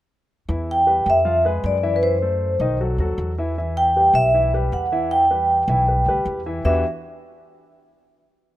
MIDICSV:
0, 0, Header, 1, 4, 480
1, 0, Start_track
1, 0, Key_signature, 1, "minor"
1, 0, Tempo, 384615
1, 604, Time_signature, 4, 2, 24, 8
1, 10693, End_track
2, 0, Start_track
2, 0, Title_t, "Vibraphone"
2, 0, Program_c, 0, 11
2, 889, Note_on_c, 0, 79, 90
2, 1360, Note_off_c, 0, 79, 0
2, 1370, Note_on_c, 0, 76, 94
2, 1795, Note_off_c, 0, 76, 0
2, 2072, Note_on_c, 0, 74, 80
2, 2425, Note_off_c, 0, 74, 0
2, 2446, Note_on_c, 0, 71, 58
2, 2530, Note_off_c, 0, 71, 0
2, 2532, Note_on_c, 0, 72, 85
2, 3441, Note_off_c, 0, 72, 0
2, 4707, Note_on_c, 0, 79, 96
2, 5180, Note_on_c, 0, 76, 97
2, 5194, Note_off_c, 0, 79, 0
2, 5623, Note_off_c, 0, 76, 0
2, 5906, Note_on_c, 0, 78, 79
2, 6380, Note_on_c, 0, 79, 93
2, 6394, Note_off_c, 0, 78, 0
2, 7766, Note_off_c, 0, 79, 0
2, 8303, Note_on_c, 0, 76, 84
2, 8520, Note_off_c, 0, 76, 0
2, 10693, End_track
3, 0, Start_track
3, 0, Title_t, "Grand piano"
3, 0, Program_c, 1, 0
3, 606, Note_on_c, 1, 52, 68
3, 607, Note_on_c, 1, 64, 71
3, 615, Note_on_c, 1, 76, 67
3, 999, Note_off_c, 1, 52, 0
3, 1000, Note_off_c, 1, 64, 0
3, 1004, Note_off_c, 1, 76, 0
3, 1080, Note_on_c, 1, 55, 57
3, 1082, Note_on_c, 1, 67, 59
3, 1086, Note_on_c, 1, 71, 63
3, 1475, Note_off_c, 1, 55, 0
3, 1477, Note_off_c, 1, 67, 0
3, 1479, Note_off_c, 1, 71, 0
3, 1559, Note_on_c, 1, 65, 75
3, 1561, Note_on_c, 1, 53, 72
3, 1567, Note_on_c, 1, 77, 69
3, 1758, Note_off_c, 1, 65, 0
3, 1759, Note_off_c, 1, 53, 0
3, 1763, Note_off_c, 1, 77, 0
3, 1806, Note_on_c, 1, 56, 73
3, 1809, Note_on_c, 1, 68, 78
3, 1818, Note_on_c, 1, 71, 80
3, 2199, Note_off_c, 1, 56, 0
3, 2201, Note_off_c, 1, 68, 0
3, 2207, Note_off_c, 1, 71, 0
3, 2286, Note_on_c, 1, 52, 77
3, 2287, Note_on_c, 1, 64, 80
3, 2288, Note_on_c, 1, 76, 83
3, 2680, Note_off_c, 1, 52, 0
3, 2680, Note_off_c, 1, 64, 0
3, 2681, Note_off_c, 1, 76, 0
3, 2772, Note_on_c, 1, 57, 69
3, 2773, Note_on_c, 1, 69, 68
3, 2777, Note_on_c, 1, 72, 69
3, 3164, Note_off_c, 1, 57, 0
3, 3164, Note_off_c, 1, 69, 0
3, 3167, Note_off_c, 1, 72, 0
3, 3254, Note_on_c, 1, 51, 78
3, 3257, Note_on_c, 1, 63, 77
3, 3260, Note_on_c, 1, 75, 78
3, 3448, Note_off_c, 1, 51, 0
3, 3450, Note_off_c, 1, 63, 0
3, 3452, Note_off_c, 1, 75, 0
3, 3503, Note_on_c, 1, 54, 68
3, 3505, Note_on_c, 1, 66, 66
3, 3506, Note_on_c, 1, 69, 65
3, 3694, Note_off_c, 1, 54, 0
3, 3695, Note_off_c, 1, 66, 0
3, 3695, Note_off_c, 1, 69, 0
3, 3741, Note_on_c, 1, 54, 72
3, 3746, Note_on_c, 1, 66, 71
3, 3751, Note_on_c, 1, 69, 77
3, 4130, Note_off_c, 1, 54, 0
3, 4133, Note_off_c, 1, 66, 0
3, 4136, Note_off_c, 1, 69, 0
3, 4222, Note_on_c, 1, 52, 76
3, 4225, Note_on_c, 1, 64, 74
3, 4232, Note_on_c, 1, 76, 72
3, 4414, Note_off_c, 1, 52, 0
3, 4416, Note_off_c, 1, 64, 0
3, 4420, Note_off_c, 1, 76, 0
3, 4469, Note_on_c, 1, 52, 72
3, 4469, Note_on_c, 1, 64, 66
3, 4471, Note_on_c, 1, 76, 69
3, 4855, Note_off_c, 1, 52, 0
3, 4855, Note_off_c, 1, 64, 0
3, 4856, Note_off_c, 1, 76, 0
3, 4944, Note_on_c, 1, 55, 61
3, 4949, Note_on_c, 1, 67, 64
3, 4951, Note_on_c, 1, 71, 54
3, 5333, Note_off_c, 1, 55, 0
3, 5336, Note_off_c, 1, 67, 0
3, 5337, Note_off_c, 1, 71, 0
3, 5420, Note_on_c, 1, 52, 74
3, 5421, Note_on_c, 1, 64, 77
3, 5427, Note_on_c, 1, 76, 71
3, 5613, Note_off_c, 1, 52, 0
3, 5614, Note_off_c, 1, 64, 0
3, 5617, Note_off_c, 1, 76, 0
3, 5662, Note_on_c, 1, 55, 76
3, 5669, Note_on_c, 1, 67, 78
3, 5671, Note_on_c, 1, 71, 69
3, 6052, Note_off_c, 1, 55, 0
3, 6056, Note_off_c, 1, 67, 0
3, 6057, Note_off_c, 1, 71, 0
3, 6141, Note_on_c, 1, 52, 81
3, 6147, Note_on_c, 1, 64, 76
3, 6147, Note_on_c, 1, 76, 75
3, 6531, Note_off_c, 1, 52, 0
3, 6535, Note_off_c, 1, 64, 0
3, 6535, Note_off_c, 1, 76, 0
3, 6621, Note_on_c, 1, 55, 71
3, 6625, Note_on_c, 1, 67, 67
3, 6626, Note_on_c, 1, 71, 66
3, 7011, Note_off_c, 1, 55, 0
3, 7014, Note_off_c, 1, 67, 0
3, 7014, Note_off_c, 1, 71, 0
3, 7103, Note_on_c, 1, 52, 77
3, 7106, Note_on_c, 1, 76, 73
3, 7107, Note_on_c, 1, 64, 75
3, 7295, Note_off_c, 1, 52, 0
3, 7297, Note_off_c, 1, 76, 0
3, 7298, Note_off_c, 1, 64, 0
3, 7339, Note_on_c, 1, 55, 65
3, 7343, Note_on_c, 1, 67, 63
3, 7345, Note_on_c, 1, 71, 63
3, 7533, Note_off_c, 1, 55, 0
3, 7535, Note_off_c, 1, 67, 0
3, 7537, Note_off_c, 1, 71, 0
3, 7590, Note_on_c, 1, 55, 76
3, 7593, Note_on_c, 1, 67, 74
3, 7595, Note_on_c, 1, 71, 76
3, 7975, Note_off_c, 1, 55, 0
3, 7977, Note_off_c, 1, 67, 0
3, 7979, Note_off_c, 1, 71, 0
3, 8064, Note_on_c, 1, 52, 79
3, 8066, Note_on_c, 1, 64, 69
3, 8068, Note_on_c, 1, 76, 73
3, 8255, Note_off_c, 1, 52, 0
3, 8256, Note_off_c, 1, 64, 0
3, 8258, Note_off_c, 1, 76, 0
3, 8298, Note_on_c, 1, 52, 86
3, 8299, Note_on_c, 1, 59, 73
3, 8306, Note_on_c, 1, 62, 71
3, 8306, Note_on_c, 1, 64, 75
3, 8310, Note_on_c, 1, 67, 85
3, 8313, Note_on_c, 1, 66, 74
3, 8517, Note_off_c, 1, 52, 0
3, 8518, Note_off_c, 1, 59, 0
3, 8521, Note_off_c, 1, 62, 0
3, 8521, Note_off_c, 1, 64, 0
3, 8524, Note_off_c, 1, 67, 0
3, 8525, Note_off_c, 1, 66, 0
3, 10693, End_track
4, 0, Start_track
4, 0, Title_t, "Upright bass"
4, 0, Program_c, 2, 32
4, 605, Note_on_c, 2, 40, 90
4, 1275, Note_off_c, 2, 40, 0
4, 1322, Note_on_c, 2, 41, 85
4, 1993, Note_off_c, 2, 41, 0
4, 2041, Note_on_c, 2, 42, 94
4, 3171, Note_off_c, 2, 42, 0
4, 3240, Note_on_c, 2, 35, 91
4, 3690, Note_off_c, 2, 35, 0
4, 3721, Note_on_c, 2, 39, 69
4, 3948, Note_off_c, 2, 39, 0
4, 3966, Note_on_c, 2, 40, 88
4, 5096, Note_off_c, 2, 40, 0
4, 5159, Note_on_c, 2, 35, 88
4, 5836, Note_off_c, 2, 35, 0
4, 5893, Note_on_c, 2, 40, 83
4, 7019, Note_off_c, 2, 40, 0
4, 7084, Note_on_c, 2, 35, 97
4, 7534, Note_off_c, 2, 35, 0
4, 7560, Note_on_c, 2, 38, 70
4, 7788, Note_off_c, 2, 38, 0
4, 7806, Note_on_c, 2, 40, 86
4, 8232, Note_off_c, 2, 40, 0
4, 8294, Note_on_c, 2, 40, 88
4, 8515, Note_off_c, 2, 40, 0
4, 10693, End_track
0, 0, End_of_file